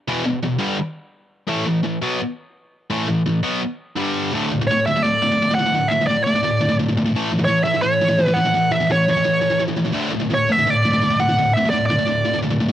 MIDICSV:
0, 0, Header, 1, 3, 480
1, 0, Start_track
1, 0, Tempo, 353357
1, 69, Time_signature, 4, 2, 24, 8
1, 17279, End_track
2, 0, Start_track
2, 0, Title_t, "Lead electric guitar"
2, 0, Program_c, 0, 29
2, 6349, Note_on_c, 0, 73, 83
2, 6565, Note_off_c, 0, 73, 0
2, 6601, Note_on_c, 0, 76, 89
2, 6827, Note_off_c, 0, 76, 0
2, 6827, Note_on_c, 0, 74, 103
2, 7531, Note_off_c, 0, 74, 0
2, 7536, Note_on_c, 0, 78, 108
2, 7988, Note_on_c, 0, 76, 105
2, 8029, Note_off_c, 0, 78, 0
2, 8223, Note_off_c, 0, 76, 0
2, 8242, Note_on_c, 0, 74, 92
2, 8456, Note_off_c, 0, 74, 0
2, 8473, Note_on_c, 0, 74, 81
2, 9150, Note_off_c, 0, 74, 0
2, 10116, Note_on_c, 0, 73, 84
2, 10371, Note_off_c, 0, 73, 0
2, 10377, Note_on_c, 0, 76, 89
2, 10614, Note_off_c, 0, 76, 0
2, 10629, Note_on_c, 0, 73, 97
2, 11227, Note_off_c, 0, 73, 0
2, 11227, Note_on_c, 0, 71, 97
2, 11326, Note_on_c, 0, 78, 110
2, 11379, Note_off_c, 0, 71, 0
2, 11839, Note_off_c, 0, 78, 0
2, 11844, Note_on_c, 0, 76, 100
2, 12067, Note_off_c, 0, 76, 0
2, 12117, Note_on_c, 0, 73, 89
2, 12346, Note_off_c, 0, 73, 0
2, 12369, Note_on_c, 0, 73, 86
2, 13015, Note_off_c, 0, 73, 0
2, 14049, Note_on_c, 0, 73, 85
2, 14287, Note_off_c, 0, 73, 0
2, 14287, Note_on_c, 0, 76, 94
2, 14538, Note_off_c, 0, 76, 0
2, 14538, Note_on_c, 0, 74, 96
2, 15211, Note_on_c, 0, 78, 109
2, 15223, Note_off_c, 0, 74, 0
2, 15647, Note_off_c, 0, 78, 0
2, 15668, Note_on_c, 0, 76, 105
2, 15884, Note_off_c, 0, 76, 0
2, 15889, Note_on_c, 0, 74, 86
2, 16093, Note_off_c, 0, 74, 0
2, 16109, Note_on_c, 0, 74, 82
2, 16794, Note_off_c, 0, 74, 0
2, 17279, End_track
3, 0, Start_track
3, 0, Title_t, "Distorted electric guitar"
3, 0, Program_c, 1, 30
3, 106, Note_on_c, 1, 47, 102
3, 109, Note_on_c, 1, 40, 95
3, 123, Note_on_c, 1, 52, 106
3, 322, Note_off_c, 1, 47, 0
3, 323, Note_off_c, 1, 40, 0
3, 330, Note_off_c, 1, 52, 0
3, 348, Note_on_c, 1, 40, 64
3, 353, Note_on_c, 1, 47, 74
3, 523, Note_off_c, 1, 40, 0
3, 525, Note_off_c, 1, 47, 0
3, 584, Note_on_c, 1, 40, 70
3, 587, Note_on_c, 1, 47, 76
3, 761, Note_off_c, 1, 40, 0
3, 763, Note_off_c, 1, 47, 0
3, 802, Note_on_c, 1, 43, 100
3, 817, Note_on_c, 1, 50, 102
3, 817, Note_on_c, 1, 55, 108
3, 1032, Note_off_c, 1, 43, 0
3, 1040, Note_off_c, 1, 50, 0
3, 1040, Note_off_c, 1, 55, 0
3, 1998, Note_on_c, 1, 45, 104
3, 2014, Note_on_c, 1, 52, 106
3, 2019, Note_on_c, 1, 57, 114
3, 2233, Note_off_c, 1, 45, 0
3, 2237, Note_off_c, 1, 52, 0
3, 2244, Note_off_c, 1, 57, 0
3, 2253, Note_on_c, 1, 45, 69
3, 2254, Note_on_c, 1, 52, 78
3, 2441, Note_off_c, 1, 45, 0
3, 2441, Note_off_c, 1, 52, 0
3, 2484, Note_on_c, 1, 45, 65
3, 2500, Note_on_c, 1, 52, 80
3, 2677, Note_off_c, 1, 45, 0
3, 2684, Note_off_c, 1, 52, 0
3, 2738, Note_on_c, 1, 47, 98
3, 2746, Note_on_c, 1, 54, 108
3, 2755, Note_on_c, 1, 59, 100
3, 2965, Note_off_c, 1, 47, 0
3, 2969, Note_off_c, 1, 54, 0
3, 2973, Note_off_c, 1, 59, 0
3, 3940, Note_on_c, 1, 45, 98
3, 3949, Note_on_c, 1, 52, 105
3, 3954, Note_on_c, 1, 57, 94
3, 4168, Note_off_c, 1, 45, 0
3, 4173, Note_off_c, 1, 52, 0
3, 4175, Note_off_c, 1, 57, 0
3, 4185, Note_on_c, 1, 45, 68
3, 4186, Note_on_c, 1, 52, 79
3, 4370, Note_off_c, 1, 45, 0
3, 4371, Note_off_c, 1, 52, 0
3, 4426, Note_on_c, 1, 45, 68
3, 4429, Note_on_c, 1, 52, 69
3, 4610, Note_off_c, 1, 45, 0
3, 4612, Note_off_c, 1, 52, 0
3, 4659, Note_on_c, 1, 47, 93
3, 4668, Note_on_c, 1, 54, 98
3, 4671, Note_on_c, 1, 59, 109
3, 4888, Note_off_c, 1, 47, 0
3, 4893, Note_off_c, 1, 54, 0
3, 4894, Note_off_c, 1, 59, 0
3, 5380, Note_on_c, 1, 43, 82
3, 5394, Note_on_c, 1, 50, 89
3, 5407, Note_on_c, 1, 55, 103
3, 5850, Note_off_c, 1, 43, 0
3, 5856, Note_off_c, 1, 50, 0
3, 5863, Note_off_c, 1, 55, 0
3, 5885, Note_on_c, 1, 38, 92
3, 5890, Note_on_c, 1, 45, 94
3, 5908, Note_on_c, 1, 50, 102
3, 6095, Note_off_c, 1, 38, 0
3, 6097, Note_off_c, 1, 45, 0
3, 6106, Note_off_c, 1, 50, 0
3, 6130, Note_on_c, 1, 45, 83
3, 6140, Note_on_c, 1, 38, 67
3, 6232, Note_off_c, 1, 45, 0
3, 6237, Note_off_c, 1, 38, 0
3, 6264, Note_on_c, 1, 45, 78
3, 6273, Note_on_c, 1, 38, 63
3, 6359, Note_off_c, 1, 45, 0
3, 6363, Note_off_c, 1, 38, 0
3, 6392, Note_on_c, 1, 45, 98
3, 6400, Note_on_c, 1, 38, 76
3, 6579, Note_off_c, 1, 45, 0
3, 6583, Note_off_c, 1, 38, 0
3, 6613, Note_on_c, 1, 45, 84
3, 6622, Note_on_c, 1, 38, 76
3, 6713, Note_off_c, 1, 45, 0
3, 6718, Note_off_c, 1, 38, 0
3, 6734, Note_on_c, 1, 45, 78
3, 6743, Note_on_c, 1, 38, 67
3, 6828, Note_off_c, 1, 38, 0
3, 6834, Note_off_c, 1, 45, 0
3, 6844, Note_on_c, 1, 38, 84
3, 6856, Note_on_c, 1, 45, 95
3, 7045, Note_off_c, 1, 38, 0
3, 7051, Note_off_c, 1, 45, 0
3, 7088, Note_on_c, 1, 45, 82
3, 7097, Note_on_c, 1, 38, 66
3, 7191, Note_off_c, 1, 45, 0
3, 7195, Note_off_c, 1, 38, 0
3, 7215, Note_on_c, 1, 38, 71
3, 7216, Note_on_c, 1, 45, 87
3, 7314, Note_off_c, 1, 38, 0
3, 7315, Note_off_c, 1, 45, 0
3, 7358, Note_on_c, 1, 38, 81
3, 7363, Note_on_c, 1, 45, 84
3, 7446, Note_off_c, 1, 38, 0
3, 7448, Note_off_c, 1, 45, 0
3, 7477, Note_on_c, 1, 45, 86
3, 7485, Note_on_c, 1, 38, 71
3, 7565, Note_off_c, 1, 45, 0
3, 7569, Note_off_c, 1, 38, 0
3, 7583, Note_on_c, 1, 45, 89
3, 7592, Note_on_c, 1, 38, 68
3, 7670, Note_off_c, 1, 45, 0
3, 7683, Note_off_c, 1, 38, 0
3, 7686, Note_on_c, 1, 45, 88
3, 7703, Note_on_c, 1, 38, 66
3, 7785, Note_off_c, 1, 45, 0
3, 7793, Note_off_c, 1, 38, 0
3, 7802, Note_on_c, 1, 45, 92
3, 7810, Note_on_c, 1, 38, 85
3, 8003, Note_off_c, 1, 45, 0
3, 8007, Note_off_c, 1, 38, 0
3, 8024, Note_on_c, 1, 45, 78
3, 8026, Note_on_c, 1, 38, 67
3, 8139, Note_off_c, 1, 38, 0
3, 8139, Note_off_c, 1, 45, 0
3, 8159, Note_on_c, 1, 45, 88
3, 8164, Note_on_c, 1, 38, 74
3, 8266, Note_off_c, 1, 45, 0
3, 8268, Note_off_c, 1, 38, 0
3, 8284, Note_on_c, 1, 38, 82
3, 8284, Note_on_c, 1, 45, 86
3, 8484, Note_off_c, 1, 38, 0
3, 8484, Note_off_c, 1, 45, 0
3, 8509, Note_on_c, 1, 38, 70
3, 8514, Note_on_c, 1, 45, 86
3, 8611, Note_off_c, 1, 45, 0
3, 8621, Note_off_c, 1, 38, 0
3, 8627, Note_on_c, 1, 45, 77
3, 8639, Note_on_c, 1, 38, 63
3, 8710, Note_off_c, 1, 38, 0
3, 8727, Note_on_c, 1, 38, 85
3, 8732, Note_off_c, 1, 45, 0
3, 8748, Note_on_c, 1, 45, 89
3, 8945, Note_off_c, 1, 38, 0
3, 8956, Note_off_c, 1, 45, 0
3, 8974, Note_on_c, 1, 45, 75
3, 8984, Note_on_c, 1, 38, 70
3, 9066, Note_off_c, 1, 45, 0
3, 9072, Note_off_c, 1, 38, 0
3, 9082, Note_on_c, 1, 45, 89
3, 9089, Note_on_c, 1, 38, 70
3, 9207, Note_off_c, 1, 45, 0
3, 9210, Note_off_c, 1, 38, 0
3, 9227, Note_on_c, 1, 45, 87
3, 9228, Note_on_c, 1, 38, 83
3, 9333, Note_off_c, 1, 45, 0
3, 9335, Note_off_c, 1, 38, 0
3, 9349, Note_on_c, 1, 45, 94
3, 9351, Note_on_c, 1, 38, 70
3, 9453, Note_off_c, 1, 45, 0
3, 9461, Note_off_c, 1, 38, 0
3, 9469, Note_on_c, 1, 45, 84
3, 9482, Note_on_c, 1, 38, 67
3, 9568, Note_off_c, 1, 45, 0
3, 9584, Note_on_c, 1, 45, 94
3, 9586, Note_off_c, 1, 38, 0
3, 9602, Note_on_c, 1, 38, 77
3, 9697, Note_off_c, 1, 45, 0
3, 9706, Note_off_c, 1, 38, 0
3, 9717, Note_on_c, 1, 45, 96
3, 9724, Note_on_c, 1, 52, 108
3, 9725, Note_on_c, 1, 57, 115
3, 9928, Note_off_c, 1, 52, 0
3, 9929, Note_off_c, 1, 45, 0
3, 9933, Note_off_c, 1, 57, 0
3, 9945, Note_on_c, 1, 52, 90
3, 9946, Note_on_c, 1, 45, 73
3, 10022, Note_off_c, 1, 52, 0
3, 10032, Note_off_c, 1, 45, 0
3, 10038, Note_on_c, 1, 52, 75
3, 10048, Note_on_c, 1, 45, 67
3, 10145, Note_off_c, 1, 45, 0
3, 10154, Note_off_c, 1, 52, 0
3, 10161, Note_on_c, 1, 45, 84
3, 10171, Note_on_c, 1, 52, 86
3, 10379, Note_off_c, 1, 52, 0
3, 10381, Note_off_c, 1, 45, 0
3, 10396, Note_on_c, 1, 52, 91
3, 10401, Note_on_c, 1, 45, 68
3, 10501, Note_off_c, 1, 52, 0
3, 10511, Note_off_c, 1, 45, 0
3, 10517, Note_on_c, 1, 52, 76
3, 10528, Note_on_c, 1, 45, 69
3, 10623, Note_off_c, 1, 45, 0
3, 10628, Note_off_c, 1, 52, 0
3, 10639, Note_on_c, 1, 45, 81
3, 10644, Note_on_c, 1, 52, 84
3, 10859, Note_off_c, 1, 45, 0
3, 10862, Note_off_c, 1, 52, 0
3, 10886, Note_on_c, 1, 52, 86
3, 10887, Note_on_c, 1, 45, 70
3, 10970, Note_off_c, 1, 45, 0
3, 10980, Note_off_c, 1, 52, 0
3, 10986, Note_on_c, 1, 45, 71
3, 10996, Note_on_c, 1, 52, 89
3, 11105, Note_off_c, 1, 45, 0
3, 11108, Note_off_c, 1, 52, 0
3, 11121, Note_on_c, 1, 45, 77
3, 11124, Note_on_c, 1, 52, 85
3, 11225, Note_off_c, 1, 45, 0
3, 11231, Note_off_c, 1, 52, 0
3, 11241, Note_on_c, 1, 45, 73
3, 11248, Note_on_c, 1, 52, 83
3, 11346, Note_off_c, 1, 52, 0
3, 11350, Note_off_c, 1, 45, 0
3, 11363, Note_on_c, 1, 52, 80
3, 11367, Note_on_c, 1, 45, 66
3, 11465, Note_off_c, 1, 52, 0
3, 11469, Note_off_c, 1, 45, 0
3, 11481, Note_on_c, 1, 52, 95
3, 11485, Note_on_c, 1, 45, 74
3, 11585, Note_off_c, 1, 45, 0
3, 11592, Note_off_c, 1, 52, 0
3, 11601, Note_on_c, 1, 45, 80
3, 11608, Note_on_c, 1, 52, 91
3, 11815, Note_off_c, 1, 45, 0
3, 11815, Note_off_c, 1, 52, 0
3, 11831, Note_on_c, 1, 45, 69
3, 11832, Note_on_c, 1, 52, 82
3, 11938, Note_off_c, 1, 52, 0
3, 11950, Note_off_c, 1, 45, 0
3, 11954, Note_on_c, 1, 52, 77
3, 11966, Note_on_c, 1, 45, 62
3, 12070, Note_off_c, 1, 45, 0
3, 12070, Note_off_c, 1, 52, 0
3, 12087, Note_on_c, 1, 45, 85
3, 12087, Note_on_c, 1, 52, 87
3, 12301, Note_off_c, 1, 45, 0
3, 12301, Note_off_c, 1, 52, 0
3, 12339, Note_on_c, 1, 52, 89
3, 12351, Note_on_c, 1, 45, 68
3, 12434, Note_off_c, 1, 52, 0
3, 12448, Note_off_c, 1, 45, 0
3, 12451, Note_on_c, 1, 52, 83
3, 12464, Note_on_c, 1, 45, 65
3, 12540, Note_off_c, 1, 45, 0
3, 12552, Note_off_c, 1, 52, 0
3, 12557, Note_on_c, 1, 45, 78
3, 12569, Note_on_c, 1, 52, 79
3, 12772, Note_off_c, 1, 52, 0
3, 12775, Note_off_c, 1, 45, 0
3, 12788, Note_on_c, 1, 52, 74
3, 12799, Note_on_c, 1, 45, 61
3, 12891, Note_off_c, 1, 52, 0
3, 12902, Note_off_c, 1, 45, 0
3, 12907, Note_on_c, 1, 52, 85
3, 12918, Note_on_c, 1, 45, 67
3, 13021, Note_off_c, 1, 45, 0
3, 13028, Note_off_c, 1, 52, 0
3, 13038, Note_on_c, 1, 45, 74
3, 13044, Note_on_c, 1, 52, 82
3, 13133, Note_off_c, 1, 52, 0
3, 13141, Note_off_c, 1, 45, 0
3, 13150, Note_on_c, 1, 52, 84
3, 13157, Note_on_c, 1, 45, 65
3, 13255, Note_off_c, 1, 52, 0
3, 13262, Note_off_c, 1, 45, 0
3, 13272, Note_on_c, 1, 52, 77
3, 13279, Note_on_c, 1, 45, 64
3, 13371, Note_off_c, 1, 45, 0
3, 13376, Note_off_c, 1, 52, 0
3, 13387, Note_on_c, 1, 45, 76
3, 13393, Note_on_c, 1, 52, 89
3, 13488, Note_off_c, 1, 45, 0
3, 13497, Note_on_c, 1, 38, 97
3, 13499, Note_off_c, 1, 52, 0
3, 13504, Note_on_c, 1, 45, 87
3, 13517, Note_on_c, 1, 50, 96
3, 13732, Note_off_c, 1, 38, 0
3, 13736, Note_off_c, 1, 45, 0
3, 13742, Note_off_c, 1, 50, 0
3, 13757, Note_on_c, 1, 45, 86
3, 13766, Note_on_c, 1, 38, 70
3, 13856, Note_off_c, 1, 38, 0
3, 13860, Note_off_c, 1, 45, 0
3, 13873, Note_on_c, 1, 38, 63
3, 13877, Note_on_c, 1, 45, 76
3, 13989, Note_off_c, 1, 38, 0
3, 13997, Note_off_c, 1, 45, 0
3, 14005, Note_on_c, 1, 38, 82
3, 14014, Note_on_c, 1, 45, 85
3, 14216, Note_off_c, 1, 38, 0
3, 14221, Note_off_c, 1, 45, 0
3, 14257, Note_on_c, 1, 45, 94
3, 14264, Note_on_c, 1, 38, 75
3, 14366, Note_off_c, 1, 45, 0
3, 14369, Note_off_c, 1, 38, 0
3, 14382, Note_on_c, 1, 45, 73
3, 14392, Note_on_c, 1, 38, 60
3, 14471, Note_off_c, 1, 38, 0
3, 14487, Note_on_c, 1, 38, 78
3, 14488, Note_off_c, 1, 45, 0
3, 14502, Note_on_c, 1, 45, 89
3, 14696, Note_off_c, 1, 38, 0
3, 14704, Note_off_c, 1, 45, 0
3, 14737, Note_on_c, 1, 45, 82
3, 14744, Note_on_c, 1, 38, 70
3, 14832, Note_off_c, 1, 45, 0
3, 14838, Note_off_c, 1, 38, 0
3, 14848, Note_on_c, 1, 45, 88
3, 14854, Note_on_c, 1, 38, 66
3, 14948, Note_off_c, 1, 38, 0
3, 14960, Note_off_c, 1, 45, 0
3, 14964, Note_on_c, 1, 38, 73
3, 14978, Note_on_c, 1, 45, 86
3, 15067, Note_off_c, 1, 38, 0
3, 15067, Note_off_c, 1, 45, 0
3, 15083, Note_on_c, 1, 38, 73
3, 15084, Note_on_c, 1, 45, 91
3, 15192, Note_off_c, 1, 45, 0
3, 15197, Note_off_c, 1, 38, 0
3, 15209, Note_on_c, 1, 45, 84
3, 15217, Note_on_c, 1, 38, 68
3, 15317, Note_off_c, 1, 45, 0
3, 15321, Note_off_c, 1, 38, 0
3, 15333, Note_on_c, 1, 45, 94
3, 15337, Note_on_c, 1, 38, 82
3, 15439, Note_off_c, 1, 38, 0
3, 15442, Note_off_c, 1, 45, 0
3, 15456, Note_on_c, 1, 38, 80
3, 15464, Note_on_c, 1, 45, 96
3, 15658, Note_off_c, 1, 38, 0
3, 15663, Note_off_c, 1, 45, 0
3, 15714, Note_on_c, 1, 38, 75
3, 15715, Note_on_c, 1, 45, 86
3, 15811, Note_off_c, 1, 38, 0
3, 15812, Note_off_c, 1, 45, 0
3, 15827, Note_on_c, 1, 45, 83
3, 15834, Note_on_c, 1, 38, 67
3, 15913, Note_off_c, 1, 38, 0
3, 15919, Note_off_c, 1, 45, 0
3, 15929, Note_on_c, 1, 38, 83
3, 15936, Note_on_c, 1, 45, 91
3, 16134, Note_off_c, 1, 38, 0
3, 16138, Note_off_c, 1, 45, 0
3, 16164, Note_on_c, 1, 45, 82
3, 16180, Note_on_c, 1, 38, 78
3, 16267, Note_off_c, 1, 45, 0
3, 16269, Note_off_c, 1, 38, 0
3, 16283, Note_on_c, 1, 45, 84
3, 16285, Note_on_c, 1, 38, 69
3, 16381, Note_off_c, 1, 38, 0
3, 16389, Note_off_c, 1, 45, 0
3, 16398, Note_on_c, 1, 38, 78
3, 16406, Note_on_c, 1, 45, 91
3, 16607, Note_off_c, 1, 38, 0
3, 16611, Note_off_c, 1, 45, 0
3, 16643, Note_on_c, 1, 45, 88
3, 16645, Note_on_c, 1, 38, 65
3, 16742, Note_off_c, 1, 45, 0
3, 16746, Note_off_c, 1, 38, 0
3, 16759, Note_on_c, 1, 45, 99
3, 16763, Note_on_c, 1, 38, 81
3, 16864, Note_off_c, 1, 38, 0
3, 16872, Note_off_c, 1, 45, 0
3, 16880, Note_on_c, 1, 38, 81
3, 16890, Note_on_c, 1, 45, 84
3, 16969, Note_off_c, 1, 45, 0
3, 16977, Note_off_c, 1, 38, 0
3, 16985, Note_on_c, 1, 45, 87
3, 16994, Note_on_c, 1, 38, 77
3, 17104, Note_off_c, 1, 45, 0
3, 17109, Note_off_c, 1, 38, 0
3, 17118, Note_on_c, 1, 45, 85
3, 17125, Note_on_c, 1, 38, 67
3, 17216, Note_off_c, 1, 45, 0
3, 17222, Note_off_c, 1, 38, 0
3, 17232, Note_on_c, 1, 45, 99
3, 17279, Note_off_c, 1, 45, 0
3, 17279, End_track
0, 0, End_of_file